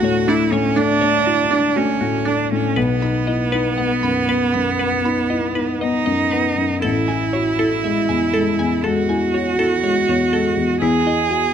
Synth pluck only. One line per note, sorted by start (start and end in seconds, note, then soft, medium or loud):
0.04 0.19 C#5 medium
0.28 0.42 D4 medium
0.53 0.67 C#5 medium
0.76 0.91 D4 medium
1.01 1.16 C#5 medium
1.26 1.41 F#4 medium
1.51 1.66 D4 medium
1.76 1.91 F#4 medium
2.01 2.16 F#4 medium
2.25 2.41 D4 medium
2.76 2.91 B4 medium
3.02 3.17 B5 medium
3.27 3.42 D#5 medium
3.52 3.67 B4 medium
3.78 3.93 F#5 medium
4.03 4.18 B5 medium
4.29 4.44 B4 medium
4.54 4.69 B5 medium
4.79 4.95 B4 medium
5.05 5.20 B5 medium
5.30 5.45 D#5 soft
5.55 5.71 B4 medium
5.81 5.97 D#5 medium
6.06 6.22 D#5 medium
6.31 6.47 B4 medium
6.82 6.98 A4 medium
7.08 7.24 G#5 medium
7.33 7.49 C#5 medium
7.59 7.74 A4 medium
7.84 7.99 E5 medium
8.09 8.24 G#5 medium
8.34 8.49 A4 medium
8.59 8.74 G#5 medium
8.84 8.99 A4 medium
9.09 9.24 G#5 medium
9.34 9.49 C#5 medium
9.59 9.74 A4 medium
9.84 9.98 C#5 medium
10.08 10.23 C#5 medium
10.33 10.48 A4 medium
10.82 10.96 E4 medium
11.07 11.21 D#5 medium
11.31 11.45 G#4 medium